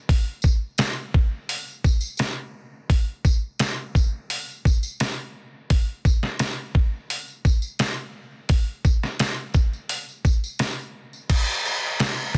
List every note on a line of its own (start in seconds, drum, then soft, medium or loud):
0.09 kick loud
0.09 open hi-hat medium
0.42 kick medium
0.42 tambourine medium
0.78 snare loud
0.78 open hi-hat medium
0.78 tambourine loud
1.14 kick medium
1.49 open hi-hat medium
1.67 tambourine soft
1.84 kick medium
1.84 tambourine medium
2.01 tambourine medium
2.17 snare loud
2.17 open hi-hat medium
2.17 tambourine medium
2.90 kick loud
2.90 open hi-hat medium
3.25 kick medium
3.25 tambourine medium
3.59 snare loud
3.59 open hi-hat medium
3.59 tambourine medium
3.95 kick medium
3.95 tambourine medium
4.30 open hi-hat medium
4.48 tambourine soft
4.65 kick medium
4.65 tambourine medium
4.83 tambourine medium
5.00 snare loud
5.00 open hi-hat medium
5.00 tambourine medium
5.70 kick loud
5.70 open hi-hat medium
6.05 kick medium
6.05 tambourine medium
6.23 snare soft
6.39 snare loud
6.39 open hi-hat medium
6.39 tambourine loud
6.75 kick medium
7.10 open hi-hat medium
7.28 tambourine soft
7.45 kick medium
7.45 tambourine medium
7.62 tambourine medium
7.79 snare medium
7.79 open hi-hat medium
7.79 tambourine medium
8.49 kick loud
8.49 open hi-hat medium
8.49 tambourine soft
8.85 kick medium
8.85 tambourine medium
9.03 snare soft
9.03 tambourine soft
9.19 snare loud
9.19 open hi-hat medium
9.19 tambourine medium
9.54 kick medium
9.54 tambourine medium
9.73 tambourine soft
9.89 open hi-hat medium
10.09 tambourine soft
10.25 kick medium
10.25 tambourine medium
10.44 tambourine medium
10.59 snare loud
10.59 open hi-hat medium
10.59 tambourine medium
10.79 tambourine soft
11.13 tambourine soft
11.30 kick loud
11.30 crash loud
11.30 tambourine medium
11.30 crash medium
11.65 tambourine medium
11.65 crash medium
12.00 snare loud
12.00 tambourine medium
12.00 crash medium
12.35 kick medium
12.35 crash medium